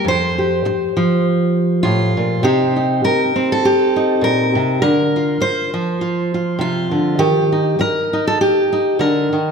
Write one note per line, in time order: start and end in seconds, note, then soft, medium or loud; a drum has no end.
0.05 0.64 F2 medium
0.05 1.26 C5 loud
0.38 2.40 G4 soft
0.65 muted steel-string acoustic guitar stroke medium
0.97 2.43 F3 medium
1.83 2.17 A2 medium
1.83 2.43 F4 medium
2.17 2.44 A#2 medium
2.43 3.03 C3 medium
2.43 3.35 C4 soft
2.43 2.75 D#4 soft
2.43 3.63 G4 medium
2.76 3.95 D#4 soft
3.04 3.50 A#4 medium
3.04 muted steel-string acoustic guitar stroke medium
3.36 4.78 C4 medium
3.52 4.23 A4 loud
3.65 4.81 G4 medium
3.96 4.79 D#4 medium
4.21 4.55 A#2 medium
4.21 4.81 A#4 loud
4.55 4.82 C3 medium
4.82 5.39 D3 medium
4.82 6.01 A#4 loud
5.16 6.01 F4 soft
5.40 6.60 C5 loud
5.40 muted steel-string acoustic guitar stroke medium
5.74 7.52 F3 medium
6.01 6.34 F4 soft
6.34 6.61 F4 soft
6.59 6.91 C3 medium
6.59 7.20 F4 medium
6.91 7.19 D3 medium
7.19 7.78 D#3 medium
7.19 7.79 G4 loud
7.52 8.12 D#4 soft
7.79 8.26 A#4 loud
7.79 muted steel-string acoustic guitar stroke medium
8.13 8.71 D#4 medium
8.27 8.40 A4 loud
8.41 9.00 G4 loud
8.73 9.52 D#4 soft
8.99 9.32 D3 medium
8.99 9.52 A#4 medium
9.33 9.52 D#3 medium